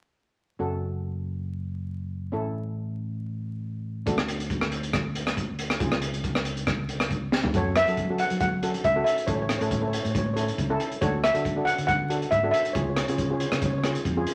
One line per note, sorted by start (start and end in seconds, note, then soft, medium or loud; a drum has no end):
0.59 2.29 F#1 medium
0.59 2.29 C#4 medium
0.59 2.30 F#4 medium
0.59 2.30 A4 medium
2.32 4.03 A1 medium
2.32 4.03 C#4 medium
2.32 4.03 E4 medium
2.32 4.03 A4 medium
4.06 5.77 D2 medium
4.06 5.77 D4 medium
4.06 5.77 F#4 medium
4.06 5.77 A4 medium
4.06 kick medium
4.06 closed hi-hat medium
4.18 cross-stick medium
4.28 closed hi-hat medium
4.40 closed hi-hat medium
4.50 kick medium
4.50 closed hi-hat medium
4.61 cross-stick medium
4.72 closed hi-hat medium
4.83 closed hi-hat medium
4.93 kick medium
4.93 cross-stick medium
4.93 closed hi-hat medium
5.15 closed hi-hat medium
5.27 cross-stick medium
5.27 closed hi-hat medium
5.37 kick medium
5.37 closed hi-hat soft
5.59 closed hi-hat medium
5.70 cross-stick medium
5.70 closed hi-hat medium
5.80 7.51 C#2 medium
5.80 7.50 C#4 medium
5.80 7.51 F4 medium
5.80 7.51 G#4 medium
5.80 kick loud
5.80 closed hi-hat medium
5.92 cross-stick medium
6.02 closed hi-hat medium
6.14 closed hi-hat medium
6.24 kick medium
6.24 closed hi-hat soft
6.35 cross-stick medium
6.45 closed hi-hat medium
6.57 closed hi-hat medium
6.67 kick medium
6.67 cross-stick medium
6.67 closed hi-hat soft
6.89 closed hi-hat medium
7.00 cross-stick medium
7.00 closed hi-hat soft
7.10 kick medium
7.10 closed hi-hat soft
7.32 snare soft
7.44 floor tom medium
7.54 7.81 F#2 medium
7.54 7.74 C#4 medium
7.54 7.74 F#4 medium
7.54 7.74 A4 medium
7.54 7.78 C#5 medium
7.54 kick loud
7.54 closed hi-hat medium
7.76 8.21 E5 medium
7.76 cross-stick medium
7.76 closed hi-hat medium
7.87 8.23 F#3 medium
7.87 8.00 C#4 medium
7.87 8.00 F#4 medium
7.87 8.00 A4 medium
7.87 closed hi-hat medium
7.97 kick medium
7.97 closed hi-hat medium
8.10 8.41 C#4 medium
8.10 8.41 F#4 medium
8.10 8.42 A4 medium
8.18 8.29 F#5 medium
8.18 closed hi-hat medium
8.30 8.75 F#3 medium
8.30 closed hi-hat medium
8.40 8.81 F#5 medium
8.40 kick medium
8.40 closed hi-hat medium
8.63 8.82 C#4 medium
8.63 8.83 F#4 medium
8.63 8.83 A4 medium
8.63 closed hi-hat medium
8.74 closed hi-hat medium
8.84 9.02 C#2 medium
8.84 9.03 E5 medium
8.84 kick medium
8.84 closed hi-hat soft
8.96 9.15 C#4 medium
8.96 9.15 F#4 medium
8.96 9.15 A4 medium
9.04 9.25 E5 medium
9.04 closed hi-hat medium
9.18 closed hi-hat medium
9.27 9.55 A1 medium
9.27 9.48 C#4 medium
9.27 9.48 E4 medium
9.27 9.48 A4 medium
9.27 9.34 C#5 medium
9.27 kick medium
9.27 closed hi-hat medium
9.35 9.41 C#5 soft
9.42 9.48 C#5 medium
9.49 9.57 C#5 soft
9.49 cross-stick medium
9.49 closed hi-hat medium
9.58 9.97 A2 medium
9.58 9.74 C#4 medium
9.58 9.74 E4 medium
9.58 9.74 A4 medium
9.58 9.64 C#5 soft
9.58 closed hi-hat medium
9.66 9.71 C#5 soft
9.71 9.79 C#5 soft
9.71 kick medium
9.71 closed hi-hat medium
9.81 10.14 C#4 medium
9.81 10.14 E4 medium
9.81 10.14 A4 medium
9.81 9.86 C#5 soft
9.87 9.93 C#5 soft
9.93 10.02 C#5 soft
9.93 closed hi-hat medium
10.03 10.49 A2 medium
10.03 10.10 C#5 soft
10.03 closed hi-hat medium
10.11 10.17 C#5 soft
10.15 10.25 C#5 soft
10.15 kick medium
10.15 closed hi-hat medium
10.26 10.32 C#5 soft
10.34 10.56 C#4 medium
10.34 10.56 E4 medium
10.34 10.56 A4 medium
10.34 10.40 C#5 medium
10.34 closed hi-hat medium
10.41 10.49 C#5 soft
10.48 closed hi-hat soft
10.58 10.76 C#2 medium
10.58 kick medium
10.58 closed hi-hat soft
10.70 10.89 C#4 medium
10.70 10.89 E4 medium
10.70 10.89 A4 medium
10.80 closed hi-hat medium
10.92 closed hi-hat soft
11.01 11.29 D2 medium
11.01 11.21 D4 medium
11.01 11.21 F#4 medium
11.01 11.22 A4 medium
11.01 11.11 C#5 medium
11.01 kick medium
11.01 closed hi-hat medium
11.24 11.68 E5 medium
11.24 cross-stick medium
11.24 closed hi-hat medium
11.34 11.70 D3 medium
11.34 11.47 D4 medium
11.34 11.47 F#4 medium
11.34 11.47 A4 medium
11.34 closed hi-hat medium
11.45 kick medium
11.45 closed hi-hat medium
11.56 11.88 D4 medium
11.56 11.88 F#4 medium
11.56 11.89 A4 medium
11.65 11.86 F#5 medium
11.65 closed hi-hat medium
11.78 12.22 D3 medium
11.78 closed hi-hat medium
11.87 12.32 F#5 medium
11.87 kick medium
11.87 closed hi-hat medium
12.10 12.30 D4 medium
12.10 12.29 F#4 medium
12.10 12.30 A4 medium
12.10 closed hi-hat medium
12.22 closed hi-hat medium
12.31 12.50 G#2 medium
12.31 12.50 E5 medium
12.31 kick medium
12.31 closed hi-hat soft
12.43 12.63 D4 medium
12.43 12.63 F#4 medium
12.43 12.63 A4 medium
12.51 12.61 E5 medium
12.51 closed hi-hat medium
12.65 closed hi-hat medium
12.73 13.02 C#2 medium
12.73 12.95 C#4 medium
12.73 12.95 F4 medium
12.73 12.95 G#4 medium
12.73 12.80 C#5 medium
12.73 kick medium
12.73 closed hi-hat medium
12.81 12.89 C#5 soft
12.90 12.95 C#5 soft
12.97 13.02 C#5 soft
12.97 cross-stick medium
12.97 closed hi-hat medium
13.04 13.11 C#5 soft
13.08 13.44 C#3 medium
13.08 13.21 C#4 medium
13.08 13.21 F4 medium
13.08 13.21 G#4 medium
13.08 13.17 C#5 soft
13.08 closed hi-hat medium
13.18 13.25 C#5 soft
13.18 kick medium
13.18 closed hi-hat medium
13.26 13.32 C#5 soft
13.30 13.62 C#4 medium
13.30 13.62 F4 medium
13.30 13.62 G#4 medium
13.30 13.39 C#5 soft
13.40 13.49 C#5 soft
13.40 closed hi-hat medium
13.50 13.96 C#3 medium
13.50 13.56 C#5 soft
13.50 cross-stick medium
13.50 closed hi-hat medium
13.57 13.64 C#5 soft
13.62 13.72 C#5 soft
13.62 kick medium
13.62 closed hi-hat medium
13.73 13.77 C#5 soft
13.78 13.86 C#5 soft
13.84 14.03 C#4 medium
13.84 14.04 F4 medium
13.84 14.04 G#4 medium
13.84 13.95 C#5 soft
13.84 cross-stick medium
13.84 closed hi-hat medium
13.95 closed hi-hat medium
14.05 14.23 F2 medium
14.05 kick medium
14.05 closed hi-hat soft
14.17 14.34 C#4 medium
14.17 14.34 F4 medium
14.17 14.34 G#4 medium
14.27 closed hi-hat medium